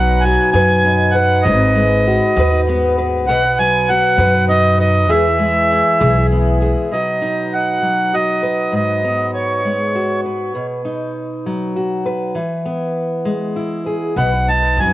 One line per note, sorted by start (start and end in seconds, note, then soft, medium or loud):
0.00 0.35 B1 medium
0.00 1.41 B2 medium
0.00 0.22 F#3 medium
0.00 1.75 F#3 medium
0.00 0.23 B3 medium
0.00 0.23 D#4 medium
0.00 0.84 D#4 medium
0.00 0.25 F#4 soft
0.00 0.24 B4 medium
0.00 0.55 B4 medium
0.00 0.24 F#5 medium
0.21 0.53 F#3 medium
0.21 0.54 B3 medium
0.21 0.54 D#4 medium
0.21 0.50 G#5 medium
0.25 1.49 F#4 medium
0.25 0.54 B4 medium
0.52 1.47 F#2 medium
0.52 0.69 B2 medium
0.52 0.69 D#3 medium
0.52 0.69 F#3 medium
0.52 0.69 B3 medium
0.52 0.68 D#4 medium
0.52 0.68 B4 medium
0.52 1.15 B4 medium
0.52 1.16 G#5 loud
0.69 0.83 F#3 soft
0.69 0.84 B3 soft
0.69 0.84 D#4 soft
0.69 0.85 B4 soft
0.84 1.15 F#3 medium
0.84 1.15 B3 medium
0.84 2.68 D#4 medium
0.84 1.15 D#4 medium
0.84 1.16 B4 medium
1.11 1.46 B4 medium
1.11 1.44 F#5 medium
1.16 1.45 F#3 medium
1.16 1.45 B3 medium
1.16 1.45 D#4 medium
1.16 1.45 B4 medium
1.42 2.18 G#1 medium
1.42 1.60 G#2 medium
1.42 3.28 G#2 medium
1.42 1.61 D#3 medium
1.42 1.61 F#3 medium
1.42 1.61 B3 medium
1.42 1.60 D#4 medium
1.42 2.39 B4 medium
1.42 1.59 B4 medium
1.42 2.61 D#5 medium
1.61 1.74 F#3 soft
1.61 1.74 B3 soft
1.61 1.75 D#4 medium
1.61 1.76 B4 medium
1.75 2.05 F#3 medium
1.75 3.24 G#3 medium
1.75 2.05 B3 medium
1.75 2.06 D#4 medium
1.75 2.06 B4 medium
2.06 2.35 F#3 medium
2.06 2.36 B3 medium
2.06 2.37 D#4 medium
2.06 3.24 F#4 medium
2.06 2.36 B4 medium
2.36 3.27 D#2 medium
2.36 2.52 G#2 medium
2.36 2.52 D#3 medium
2.36 2.52 F#3 medium
2.36 2.52 B3 medium
2.36 2.51 D#4 medium
2.36 2.50 B4 medium
2.36 2.98 B4 medium
2.52 2.65 F#3 soft
2.52 2.66 B3 medium
2.52 2.66 D#4 medium
2.52 2.67 B4 medium
2.66 2.96 F#3 medium
2.66 2.97 B3 medium
2.66 4.49 B3 medium
2.66 2.97 D#4 medium
2.66 2.98 B4 medium
2.97 3.27 F#3 medium
2.97 3.28 B3 medium
2.97 3.28 D#4 medium
2.97 3.28 B4 medium
3.27 3.99 B1 loud
3.27 5.06 B2 medium
3.27 3.43 B2 medium
3.27 3.43 D#3 medium
3.27 3.44 F#3 medium
3.27 3.44 B3 medium
3.27 3.43 D#4 medium
3.27 4.19 B4 medium
3.27 3.42 B4 medium
3.27 3.58 F#5 loud
3.43 3.57 F#3 soft
3.43 3.58 B3 medium
3.43 3.58 D#4 soft
3.43 3.58 B4 medium
3.58 3.88 F#3 medium
3.58 5.10 F#3 medium
3.58 3.89 B3 medium
3.58 3.89 D#4 medium
3.58 3.89 B4 medium
3.58 3.90 G#5 loud
3.89 4.19 F#3 medium
3.89 4.19 B3 medium
3.89 4.20 D#4 medium
3.89 5.07 F#4 medium
3.89 4.20 B4 medium
3.89 4.45 F#5 medium
4.18 5.08 F#2 medium
4.18 4.34 B2 medium
4.18 4.34 D#3 medium
4.18 4.35 F#3 medium
4.18 4.34 B3 medium
4.18 4.34 D#4 medium
4.18 4.79 B4 medium
4.18 4.33 B4 medium
4.35 4.48 F#3 soft
4.35 4.49 B3 soft
4.35 4.49 D#4 soft
4.35 4.49 B4 medium
4.49 4.77 F#3 medium
4.49 4.79 B3 medium
4.49 5.06 D#4 medium
4.49 4.79 D#4 medium
4.49 4.79 B4 medium
4.49 4.79 D#5 medium
4.78 5.09 F#3 medium
4.78 5.09 B3 medium
4.78 5.10 D#4 medium
4.78 5.09 B4 medium
4.78 5.10 B4 medium
4.78 5.11 D#5 medium
5.08 5.81 E2 loud
5.08 6.87 E3 medium
5.08 5.25 E3 medium
5.08 5.25 G#3 medium
5.08 5.25 B3 medium
5.08 5.25 E4 medium
5.08 5.99 G#4 medium
5.08 5.25 G#4 medium
5.08 6.27 E5 medium
5.26 5.39 B3 soft
5.26 5.40 E4 soft
5.26 5.40 G#4 medium
5.39 6.87 G#3 medium
5.39 5.69 G#3 medium
5.39 5.70 B3 medium
5.39 5.70 E4 medium
5.39 5.71 G#4 medium
5.70 5.99 G#3 medium
5.70 6.00 B3 medium
5.70 6.00 E4 medium
5.70 6.88 E4 medium
5.70 6.00 G#4 medium
6.00 6.73 B1 medium
6.00 6.15 E3 medium
6.00 6.15 G#3 medium
6.00 6.16 B3 medium
6.00 6.14 E4 medium
6.00 6.60 G#4 medium
6.00 6.14 G#4 loud
6.16 6.30 B3 soft
6.16 6.31 E4 medium
6.16 6.31 G#4 medium
6.31 6.59 G#3 medium
6.31 6.60 B3 medium
6.31 6.93 B3 soft
6.31 6.61 E4 medium
6.31 6.61 G#4 medium
6.61 6.91 G#3 medium
6.61 6.91 B3 medium
6.61 6.92 E4 medium
6.61 6.92 G#4 medium
6.91 8.69 B2 soft
6.91 7.82 F#3 soft
6.91 7.21 D#4 soft
6.91 8.13 F#4 soft
6.91 8.42 B4 soft
6.91 7.54 D#5 medium
7.21 9.04 D#4 soft
7.54 8.15 F#5 medium
7.82 9.64 F#3 soft
8.14 8.75 F#4 soft
8.14 8.74 D#5 medium
8.43 10.25 B4 soft
8.72 10.54 G#2 soft
8.72 9.31 D#5 medium
9.04 10.84 B3 soft
9.34 10.21 C#5 medium
9.65 10.52 G#3 soft
9.95 10.52 F#4 soft
10.26 12.05 B4 soft
10.55 12.33 B2 medium
10.85 12.33 D#4 soft
11.46 12.37 F#3 soft
11.76 12.33 F#4 soft
12.06 13.86 B4 soft
12.35 14.13 E3 medium
12.66 14.48 B3 soft
13.25 14.13 G#3 medium
13.56 14.14 E4 soft
13.86 14.17 G#4 soft
14.16 14.78 B1 medium
14.16 14.32 B2 medium
14.16 14.93 B2 medium
14.16 14.33 D#3 medium
14.16 14.32 F#3 medium
14.16 14.32 B3 medium
14.16 14.31 D#4 medium
14.16 14.31 B4 medium
14.16 14.49 F#5 medium
14.32 14.62 F#3 soft
14.32 14.62 B3 soft
14.32 14.61 D#4 soft
14.32 14.61 B4 soft
14.48 14.93 D#4 soft
14.48 14.79 A5 medium
14.62 14.76 F#3 soft
14.62 14.76 B3 soft
14.62 14.76 D#4 soft
14.62 14.77 B4 soft
14.77 14.93 F#2 medium
14.77 14.93 F#3 soft
14.77 14.93 F#3 medium
14.77 14.93 B3 medium
14.77 14.93 D#4 medium
14.77 14.93 B4 medium
14.77 14.93 G#5 medium